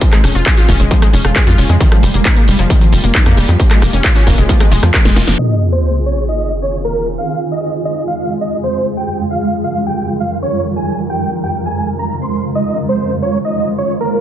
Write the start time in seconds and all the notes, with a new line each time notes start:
Already playing: G#4
0.01 C#3 F3 G#3 F4, kick, closed hi-hat
0.13 G#3, cross-stick, clap, closed hi-hat
0.24 F1 C#4, cross-stick, open hi-hat
0.35 F1 F4, closed hi-hat
0.46 G#4, kick, clap, closed hi-hat
0.57 F4, closed hi-hat
0.69 F1 C#4, kick, open hi-hat
0.80 F1 G#3, closed hi-hat
0.91 F3, kick, closed hi-hat
1.02 G#3, cross-stick, closed hi-hat
1.13 F1 C#4, open hi-hat
1.25 F1 F4, cross-stick, closed hi-hat
1.36 G#4, kick, clap, closed hi-hat
1.47 F2 F4, closed hi-hat
1.58 F1 C#4, open hi-hat
1.69 F2 G#3, closed hi-hat
1.80 D#3 A#3 F4 G4, kick, closed hi-hat
1.92 F3, cross-stick, closed hi-hat
2.03 F1 G3, open hi-hat
2.14 F1 A#3, closed hi-hat
2.25 D#4, kick, clap, closed hi-hat
2.37 A#3, closed hi-hat
2.48 F1 G3, open hi-hat
2.59 F1 F3, closed hi-hat
2.70 D#3, kick, closed hi-hat
2.81 F3, closed hi-hat
2.92 F1 G3, open hi-hat
3.04 F1 A#3, closed hi-hat
3.15 D#4, kick, clap, closed hi-hat
3.26 F2 A#3, cross-stick, closed hi-hat
3.37 F1 G3, open hi-hat
3.48 F2 F3, closed hi-hat
3.60 C#3 F3 A#3 F4 G#4, kick, closed hi-hat
3.71 G#3, cross-stick, clap, closed hi-hat
3.82 F1 A#3, cross-stick, open hi-hat
3.93 F1 C#4, closed hi-hat
4.04 F4, kick, clap, closed hi-hat
4.16 C#4, closed hi-hat
4.27 F1 A#3, kick, open hi-hat
4.38 F1 G#3, closed hi-hat
4.49 F3, kick, closed hi-hat
4.60 G#3, cross-stick, closed hi-hat
4.72 F1 G#3, open hi-hat
4.83 F2 F3, cross-stick, closed hi-hat
4.94 A#4, kick, clap, closed hi-hat
5.05 F1 G#3, snare, closed hi-hat
5.16 F1 F4, snare, open hi-hat
5.28 F1 F3, snare, closed hi-hat
5.39 D#3 C4 F4 G#4 D#5, crash, sub drop
5.72 C5
6.06 C#5
6.28 D#5
6.62 C#5
6.84 A#4
7.18 F2 C#3 G#3 G#4 F5
7.52 D#5
7.85 D#5
8.08 F5
8.41 D#5
8.63 C5
8.97 D#3 G3 A#4 G5
9.31 F5
9.64 F5
9.87 G5
10.20 F5
10.42 C#5
10.76 C#3 G#3 F4 G#5
11.10 G5
11.43 G5
11.66 G#5
11.99 A#5
12.22 C6
12.55 D#3 G#3 C5 D#5
12.89 C5
13.22 C#5
13.45 D#5
13.78 C#5
14.00 A#4